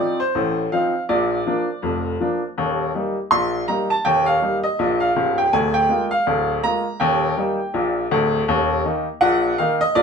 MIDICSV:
0, 0, Header, 1, 2, 480
1, 0, Start_track
1, 0, Tempo, 738916
1, 705, Time_signature, 2, 2, 24, 8
1, 6512, End_track
2, 0, Start_track
2, 0, Title_t, "Upright piano"
2, 0, Program_c, 0, 0
2, 0, Note_on_c, 0, 53, 42
2, 0, Note_on_c, 0, 60, 40
2, 0, Note_on_c, 0, 63, 43
2, 0, Note_on_c, 0, 74, 77
2, 112, Note_off_c, 0, 74, 0
2, 114, Note_off_c, 0, 53, 0
2, 115, Note_off_c, 0, 60, 0
2, 116, Note_off_c, 0, 63, 0
2, 129, Note_on_c, 0, 72, 76
2, 228, Note_on_c, 0, 33, 64
2, 229, Note_on_c, 0, 45, 59
2, 398, Note_off_c, 0, 72, 0
2, 431, Note_off_c, 0, 33, 0
2, 431, Note_off_c, 0, 45, 0
2, 469, Note_on_c, 0, 77, 70
2, 471, Note_on_c, 0, 53, 38
2, 472, Note_on_c, 0, 60, 37
2, 476, Note_on_c, 0, 63, 45
2, 601, Note_off_c, 0, 53, 0
2, 602, Note_off_c, 0, 60, 0
2, 605, Note_off_c, 0, 63, 0
2, 659, Note_off_c, 0, 77, 0
2, 708, Note_on_c, 0, 74, 66
2, 709, Note_on_c, 0, 34, 59
2, 709, Note_on_c, 0, 46, 69
2, 911, Note_off_c, 0, 46, 0
2, 912, Note_off_c, 0, 34, 0
2, 949, Note_on_c, 0, 53, 40
2, 955, Note_on_c, 0, 58, 44
2, 956, Note_on_c, 0, 62, 51
2, 1080, Note_off_c, 0, 53, 0
2, 1084, Note_off_c, 0, 58, 0
2, 1085, Note_off_c, 0, 62, 0
2, 1186, Note_on_c, 0, 41, 63
2, 1189, Note_on_c, 0, 29, 54
2, 1284, Note_off_c, 0, 74, 0
2, 1390, Note_off_c, 0, 41, 0
2, 1392, Note_off_c, 0, 29, 0
2, 1430, Note_on_c, 0, 53, 40
2, 1433, Note_on_c, 0, 58, 42
2, 1437, Note_on_c, 0, 62, 42
2, 1561, Note_off_c, 0, 53, 0
2, 1563, Note_off_c, 0, 58, 0
2, 1566, Note_off_c, 0, 62, 0
2, 1674, Note_on_c, 0, 27, 60
2, 1674, Note_on_c, 0, 39, 66
2, 1875, Note_off_c, 0, 27, 0
2, 1875, Note_off_c, 0, 39, 0
2, 1915, Note_on_c, 0, 55, 44
2, 1917, Note_on_c, 0, 58, 40
2, 1921, Note_on_c, 0, 63, 44
2, 2045, Note_off_c, 0, 55, 0
2, 2046, Note_off_c, 0, 58, 0
2, 2049, Note_off_c, 0, 63, 0
2, 2149, Note_on_c, 0, 84, 80
2, 2152, Note_on_c, 0, 34, 62
2, 2154, Note_on_c, 0, 46, 52
2, 2354, Note_off_c, 0, 34, 0
2, 2355, Note_off_c, 0, 46, 0
2, 2376, Note_off_c, 0, 84, 0
2, 2390, Note_on_c, 0, 82, 68
2, 2392, Note_on_c, 0, 55, 46
2, 2397, Note_on_c, 0, 58, 43
2, 2398, Note_on_c, 0, 63, 45
2, 2522, Note_off_c, 0, 55, 0
2, 2526, Note_off_c, 0, 58, 0
2, 2527, Note_off_c, 0, 63, 0
2, 2532, Note_off_c, 0, 82, 0
2, 2536, Note_on_c, 0, 81, 82
2, 2629, Note_off_c, 0, 81, 0
2, 2630, Note_on_c, 0, 79, 86
2, 2635, Note_on_c, 0, 27, 61
2, 2635, Note_on_c, 0, 39, 69
2, 2768, Note_on_c, 0, 77, 85
2, 2771, Note_off_c, 0, 79, 0
2, 2835, Note_off_c, 0, 27, 0
2, 2835, Note_off_c, 0, 39, 0
2, 2872, Note_on_c, 0, 55, 42
2, 2874, Note_on_c, 0, 58, 39
2, 2876, Note_on_c, 0, 63, 44
2, 2961, Note_off_c, 0, 77, 0
2, 3002, Note_off_c, 0, 55, 0
2, 3004, Note_off_c, 0, 58, 0
2, 3005, Note_off_c, 0, 63, 0
2, 3011, Note_on_c, 0, 75, 76
2, 3112, Note_on_c, 0, 34, 66
2, 3115, Note_on_c, 0, 46, 62
2, 3238, Note_off_c, 0, 75, 0
2, 3250, Note_on_c, 0, 77, 75
2, 3314, Note_off_c, 0, 34, 0
2, 3315, Note_off_c, 0, 46, 0
2, 3352, Note_on_c, 0, 25, 67
2, 3352, Note_on_c, 0, 37, 63
2, 3478, Note_off_c, 0, 77, 0
2, 3494, Note_on_c, 0, 79, 77
2, 3541, Note_off_c, 0, 25, 0
2, 3542, Note_off_c, 0, 37, 0
2, 3588, Note_off_c, 0, 79, 0
2, 3593, Note_on_c, 0, 80, 85
2, 3594, Note_on_c, 0, 38, 67
2, 3596, Note_on_c, 0, 26, 60
2, 3728, Note_on_c, 0, 79, 84
2, 3733, Note_off_c, 0, 80, 0
2, 3795, Note_off_c, 0, 26, 0
2, 3795, Note_off_c, 0, 38, 0
2, 3826, Note_on_c, 0, 56, 43
2, 3828, Note_on_c, 0, 58, 46
2, 3833, Note_on_c, 0, 65, 53
2, 3921, Note_off_c, 0, 79, 0
2, 3958, Note_off_c, 0, 56, 0
2, 3959, Note_off_c, 0, 58, 0
2, 3963, Note_off_c, 0, 65, 0
2, 3969, Note_on_c, 0, 77, 84
2, 4072, Note_on_c, 0, 26, 60
2, 4072, Note_on_c, 0, 38, 68
2, 4238, Note_off_c, 0, 77, 0
2, 4273, Note_off_c, 0, 26, 0
2, 4273, Note_off_c, 0, 38, 0
2, 4310, Note_on_c, 0, 82, 88
2, 4312, Note_on_c, 0, 56, 39
2, 4316, Note_on_c, 0, 58, 40
2, 4317, Note_on_c, 0, 65, 50
2, 4442, Note_off_c, 0, 56, 0
2, 4445, Note_off_c, 0, 58, 0
2, 4446, Note_off_c, 0, 65, 0
2, 4536, Note_off_c, 0, 82, 0
2, 4546, Note_on_c, 0, 79, 72
2, 4550, Note_on_c, 0, 27, 71
2, 4551, Note_on_c, 0, 39, 80
2, 4752, Note_off_c, 0, 27, 0
2, 4752, Note_off_c, 0, 39, 0
2, 4789, Note_on_c, 0, 55, 45
2, 4793, Note_on_c, 0, 58, 48
2, 4796, Note_on_c, 0, 63, 47
2, 4920, Note_off_c, 0, 55, 0
2, 4922, Note_off_c, 0, 58, 0
2, 4925, Note_off_c, 0, 63, 0
2, 5027, Note_on_c, 0, 34, 61
2, 5029, Note_on_c, 0, 46, 67
2, 5121, Note_off_c, 0, 79, 0
2, 5230, Note_off_c, 0, 34, 0
2, 5231, Note_off_c, 0, 46, 0
2, 5271, Note_on_c, 0, 26, 75
2, 5271, Note_on_c, 0, 38, 78
2, 5460, Note_off_c, 0, 26, 0
2, 5460, Note_off_c, 0, 38, 0
2, 5511, Note_on_c, 0, 39, 83
2, 5513, Note_on_c, 0, 27, 67
2, 5712, Note_off_c, 0, 39, 0
2, 5713, Note_off_c, 0, 27, 0
2, 5746, Note_on_c, 0, 51, 46
2, 5750, Note_on_c, 0, 58, 48
2, 5753, Note_on_c, 0, 63, 53
2, 5877, Note_off_c, 0, 51, 0
2, 5880, Note_off_c, 0, 58, 0
2, 5882, Note_off_c, 0, 63, 0
2, 5982, Note_on_c, 0, 78, 98
2, 5984, Note_on_c, 0, 34, 73
2, 5985, Note_on_c, 0, 46, 72
2, 6187, Note_off_c, 0, 34, 0
2, 6188, Note_off_c, 0, 46, 0
2, 6210, Note_off_c, 0, 78, 0
2, 6225, Note_on_c, 0, 77, 85
2, 6232, Note_on_c, 0, 51, 50
2, 6234, Note_on_c, 0, 58, 46
2, 6236, Note_on_c, 0, 63, 54
2, 6361, Note_off_c, 0, 51, 0
2, 6363, Note_off_c, 0, 58, 0
2, 6364, Note_off_c, 0, 63, 0
2, 6367, Note_off_c, 0, 77, 0
2, 6372, Note_on_c, 0, 75, 98
2, 6465, Note_off_c, 0, 75, 0
2, 6465, Note_on_c, 0, 74, 95
2, 6468, Note_on_c, 0, 46, 80
2, 6469, Note_on_c, 0, 34, 70
2, 6512, Note_off_c, 0, 34, 0
2, 6512, Note_off_c, 0, 46, 0
2, 6512, Note_off_c, 0, 74, 0
2, 6512, End_track
0, 0, End_of_file